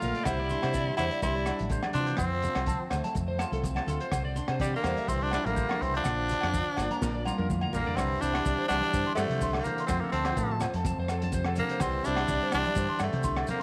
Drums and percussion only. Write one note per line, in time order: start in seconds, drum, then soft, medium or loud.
0.01 closed hi-hat soft
0.01 high conga medium
0.01 low conga medium
0.01 maracas medium
0.15 closed hi-hat soft
0.25 kick medium
0.25 cross-stick medium
0.25 closed hi-hat soft
0.25 low conga medium
0.25 low agogo medium
0.25 maracas medium
0.50 closed hi-hat soft
0.50 low conga medium
0.50 maracas medium
0.62 cross-stick medium
0.62 closed hi-hat soft
0.62 low agogo medium
0.74 kick medium
0.74 closed hi-hat soft
0.74 maracas medium
0.97 cross-stick medium
0.97 closed hi-hat soft
0.97 low conga medium
0.97 low agogo medium
0.97 maracas medium
1.11 closed hi-hat soft
1.22 kick medium
1.22 closed hi-hat soft
1.22 maracas medium
1.46 cross-stick medium
1.46 closed hi-hat soft
1.46 low agogo medium
1.46 maracas medium
1.59 closed hi-hat soft
1.59 high conga medium
1.69 kick medium
1.69 closed hi-hat soft
1.69 maracas medium
1.83 cross-stick medium
1.83 high conga medium
1.83 low agogo medium
1.93 closed hi-hat soft
1.93 low conga medium
1.93 maracas medium
2.07 closed hi-hat soft
2.17 kick medium
2.17 cross-stick medium
2.17 closed hi-hat medium
2.17 low conga medium
2.17 low agogo medium
2.17 maracas medium
2.42 closed hi-hat soft
2.42 low conga medium
2.42 maracas medium
2.55 cross-stick medium
2.55 closed hi-hat soft
2.55 low agogo medium
2.66 kick medium
2.66 closed hi-hat medium
2.66 maracas medium
2.91 cross-stick medium
2.91 closed hi-hat soft
2.91 low conga medium
2.91 low agogo medium
2.91 maracas medium
3.04 closed hi-hat medium
3.04 high conga medium
3.15 kick medium
3.15 closed hi-hat soft
3.15 maracas medium
3.39 cross-stick medium
3.39 closed hi-hat soft
3.39 low agogo medium
3.39 maracas medium
3.52 closed hi-hat soft
3.52 high conga medium
3.64 kick medium
3.64 closed hi-hat soft
3.64 maracas medium
3.76 cross-stick medium
3.76 high conga medium
3.76 low agogo medium
3.88 closed hi-hat medium
3.88 low conga medium
3.88 maracas medium
4.00 closed hi-hat soft
4.12 kick medium
4.12 cross-stick medium
4.12 closed hi-hat medium
4.12 low conga medium
4.12 low agogo medium
4.12 maracas medium
4.36 closed hi-hat soft
4.36 low conga medium
4.36 maracas medium
4.48 cross-stick medium
4.48 closed hi-hat soft
4.48 low agogo medium
4.59 kick medium
4.59 closed hi-hat medium
4.59 maracas medium
4.84 cross-stick medium
4.84 closed hi-hat soft
4.84 low conga medium
4.84 low agogo medium
4.84 maracas medium
4.97 closed hi-hat soft
4.97 high conga medium
5.08 kick medium
5.08 closed hi-hat soft
5.08 maracas medium
5.31 cross-stick medium
5.31 closed hi-hat soft
5.31 low agogo medium
5.31 maracas medium
5.46 closed hi-hat soft
5.46 high conga medium
5.57 kick medium
5.57 closed hi-hat soft
5.57 maracas medium
5.69 cross-stick medium
5.69 high conga medium
5.69 low agogo medium
5.82 closed hi-hat soft
5.82 low conga medium
5.95 closed hi-hat soft
6.04 kick medium
6.04 cross-stick medium
6.04 closed hi-hat medium
6.04 low conga medium
6.04 low agogo medium
6.04 maracas medium
6.29 closed hi-hat medium
6.29 low conga medium
6.29 maracas medium
6.41 cross-stick medium
6.41 closed hi-hat soft
6.41 low agogo medium
6.54 kick medium
6.54 closed hi-hat medium
6.54 maracas medium
6.76 cross-stick medium
6.76 closed hi-hat soft
6.76 low conga medium
6.76 low agogo medium
6.76 maracas medium
6.91 closed hi-hat medium
6.91 high conga medium
7.02 kick medium
7.02 snare soft
7.02 maracas medium
7.25 high tom soft
7.25 low agogo medium
7.25 maracas medium
7.39 high tom soft
7.39 high conga medium
7.50 kick medium
7.50 mid tom medium
7.50 maracas medium
7.61 high conga medium
7.61 low agogo medium
7.73 floor tom medium
7.73 high conga medium
7.73 low conga medium
7.73 maracas medium
7.87 floor tom medium
7.96 kick loud
7.96 cross-stick medium
7.96 closed hi-hat medium
7.96 low conga medium
7.96 low agogo medium
7.96 maracas medium
8.22 closed hi-hat soft
8.22 maracas medium
8.34 cross-stick medium
8.34 closed hi-hat soft
8.34 low agogo medium
8.46 kick medium
8.46 closed hi-hat medium
8.46 maracas loud
8.69 cross-stick medium
8.69 closed hi-hat soft
8.69 low conga medium
8.69 low agogo medium
8.69 maracas medium
8.81 closed hi-hat soft
8.81 high conga medium
8.93 kick medium
8.93 closed hi-hat soft
8.93 maracas medium
9.16 cross-stick medium
9.16 closed hi-hat soft
9.16 low agogo medium
9.16 maracas medium
9.29 closed hi-hat soft
9.29 high conga medium
9.41 kick medium
9.41 closed hi-hat soft
9.41 maracas medium
9.53 cross-stick medium
9.53 low agogo medium
9.64 closed hi-hat medium
9.64 high conga medium
9.64 low conga medium
9.64 maracas medium
9.78 closed hi-hat soft
9.88 kick loud
9.88 cross-stick medium
9.88 closed hi-hat soft
9.88 low conga medium
9.88 low agogo medium
9.88 maracas medium
10.12 closed hi-hat medium
10.25 cross-stick medium
10.25 closed hi-hat medium
10.25 low agogo medium
10.36 kick medium
10.36 closed hi-hat medium
10.36 maracas loud
10.60 cross-stick medium
10.60 closed hi-hat soft
10.60 low conga medium
10.60 low agogo medium
10.60 maracas medium
10.74 closed hi-hat soft
10.74 high conga medium
10.85 kick loud
10.85 closed hi-hat medium
10.85 maracas medium
11.08 cross-stick medium
11.08 closed hi-hat soft
11.08 low agogo medium
11.08 maracas medium
11.22 closed hi-hat medium
11.22 high conga medium
11.32 kick medium
11.32 closed hi-hat soft
11.32 maracas medium
11.45 cross-stick medium
11.45 low agogo medium
11.56 closed hi-hat medium
11.56 high conga medium
11.56 low conga medium
11.56 maracas medium
11.69 closed hi-hat medium
11.80 kick medium
11.80 cross-stick medium
11.80 closed hi-hat medium
11.80 low conga medium
11.80 low agogo medium
11.80 maracas loud
12.04 closed hi-hat medium
12.04 maracas medium
12.16 cross-stick medium
12.16 closed hi-hat soft
12.16 low agogo medium
12.28 kick medium
12.28 closed hi-hat soft
12.28 maracas loud
12.52 cross-stick medium
12.52 closed hi-hat soft
12.52 low agogo medium
12.52 maracas medium
12.65 closed hi-hat soft
12.65 high conga medium
12.75 kick loud
12.75 closed hi-hat soft
12.75 maracas medium
12.99 cross-stick medium
12.99 closed hi-hat soft
12.99 low agogo medium
12.99 maracas medium
13.13 closed hi-hat soft
13.13 high conga medium
13.23 kick medium
13.23 closed hi-hat soft
13.23 maracas medium
13.36 cross-stick medium
13.36 low agogo medium
13.47 closed hi-hat soft
13.47 high conga medium
13.47 low conga medium
13.47 maracas medium